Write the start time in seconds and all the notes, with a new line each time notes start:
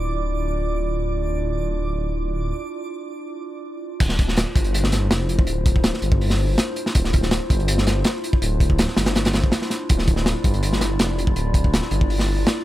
Already playing: D1 D4 E4 F4 D5 D6
4.00 D1 D4 E4 F4 C5, kick, closed hi-hat, crash
4.09 snare
4.19 kick, closed hi-hat
4.28 snare
4.37 snare, closed hi-hat
4.55 G1, kick, closed hi-hat
4.64 closed hi-hat
4.74 closed hi-hat
4.84 snare
4.92 snare, closed hi-hat
5.10 F1, snare, closed hi-hat
5.29 closed hi-hat
5.39 kick
5.47 D1, closed hi-hat
5.66 kick, closed hi-hat
5.76 kick
5.84 snare, closed hi-hat
5.94 snare
6.02 G1, closed hi-hat
6.12 kick
6.21 open hi-hat
6.30 snare
6.58 snare, closed hi-hat
6.76 closed hi-hat
6.86 snare
6.95 D1, kick, closed hi-hat
7.04 snare
7.13 kick, closed hi-hat
7.23 snare
7.31 snare, closed hi-hat
7.50 G1, kick, closed hi-hat
7.60 closed hi-hat
7.68 closed hi-hat
7.78 snare
7.87 snare, closed hi-hat
8.04 snare, closed hi-hat
8.24 closed hi-hat
8.33 kick
8.42 D1, closed hi-hat
8.60 kick, closed hi-hat
8.70 kick
8.79 snare, closed hi-hat
8.88 snare
8.97 G1, snare, closed hi-hat
9.06 snare, closed hi-hat
9.16 snare, closed hi-hat
9.25 snare, closed hi-hat
9.33 snare, closed hi-hat
9.44 kick
9.52 snare, closed hi-hat
9.62 snare
9.70 snare, closed hi-hat
9.89 D1 D5, kick, closed hi-hat
9.98 snare
10.07 kick, closed hi-hat
10.16 snare
10.26 snare, closed hi-hat
10.44 G1, kick, closed hi-hat
10.54 closed hi-hat
10.63 closed hi-hat
10.73 snare
10.81 snare, closed hi-hat
10.99 F1, snare, closed hi-hat
11.19 closed hi-hat
11.27 kick
11.36 D1, closed hi-hat
11.54 kick, closed hi-hat
11.64 kick
11.73 snare, closed hi-hat
11.82 snare
11.91 G1, closed hi-hat
12.01 kick
12.10 open hi-hat
12.19 snare
12.47 snare, closed hi-hat